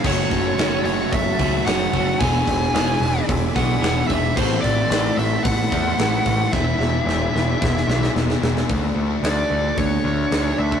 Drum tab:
CC |x---------------|----------------|x---------------|----------------|
HH |--o-o-o-o-o-o-o-|o-o-o-o-o-o-o-o-|--o-o-o-o-o-o-o-|----------------|
SD |----o-------o---|----o-----o-o---|----o-------o---|o-o-o-o-oooooooo|
BD |o-o-----o-o---o-|o-o-----o-o---o-|o-o-----o-o---o-|o-------o-------|

CC |----------------|
HH |o---o---o---o---|
SD |----o-------o---|
BD |o-------o------o|